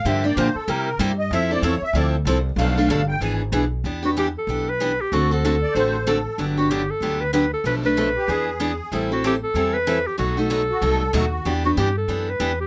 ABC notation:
X:1
M:4/4
L:1/16
Q:"Swing" 1/4=190
K:Ephr
V:1 name="Accordion"
e2 d2 c2 A2 _B4 z2 ^d2 | e2 d2 ^c2 e2 d2 z6 | f6 g2 ^g2 z6 | [K:Em] z16 |
z6 d2 c4 A4- | A z12 z3 | z6 G2 ^G2 G6- | ^G z12 z3 |
z6 F2 A4 F4- | F z12 z3 |]
V:2 name="Clarinet"
z16 | z16 | z16 | [K:Em] z2 F2 G2 A4 B4 G2 |
F2 A12 z2 | z2 F2 G2 A4 B2 B2 A2 | B2 B12 z2 | z2 F2 G2 A4 B4 G2 |
F2 A12 z2 | z2 F2 G2 A4 B4 G2 |]
V:3 name="Steel-string acoustic guitar"
[D,F,_B,DG]2 [B,DG]2 [D,F,B,DG]2 z2 [C,G,B,EG]2 z2 [C,G,B,EG]2 z2 | [F,CEA]2 [CEA]2 [F,CEA]2 z2 [F,CEA]2 z2 [F,CEA]2 z2 | [B,,F,A,DA]2 [A,DA]2 [B,,F,A,DA]2 z2 [E,B,D^G]2 z2 [E,B,DG]2 z2 | [K:Em] [E,B,DG]2 [B,DG]2 [E,B,DG]2 z2 [E,B,DG]2 z2 [E,B,DG]2 z2 |
[D,A,CFA]2 [CFA]2 [D,A,CFA]2 z2 [D,A,CFA]2 z2 [D,A,CFA]2 z2 | [D,F,B,DG]2 [B,DG]2 [D,F,B,DG]2 z2 [D,F,B,DG]2 z2 [D,F,B,DG]2 z2 | [B,,=F,A,DA]2 [A,DA]2 [B,,F,A,DA]2 z2 [E,B,D^G]2 z2 [E,B,DG]2 z2 | [E,G,CEA]2 [CEA]2 [E,G,CEA]2 z2 [E,G,CEA]2 z2 [E,G,CEA]2 z2 |
[B,,F,A,^DF]2 [A,DF]2 [B,,F,A,DF]2 z2 [B,,F,A,DF]2 z2 [B,,F,A,DF]2 z2 | [E,B,DG]2 [B,DG]2 [E,B,DG]2 z2 [E,B,DG]2 z2 [E,B,DG]2 z2 |]
V:4 name="Upright bass" clef=bass
G,,4 _B,,2 z2 C,4 G,,4 | F,,4 E,,2 z2 D,,4 C,,4 | B,,,4 G,,,4 ^G,,,4 B,,,4 | [K:Em] E,,8 B,,,8 |
D,,8 A,,,8 | G,,,8 D,,8 | B,,,8 E,,8 | A,,,8 E,,8 |
B,,,8 C,,4 ^D,,4 | E,,4 G,,4 F,,4 E,,4 |]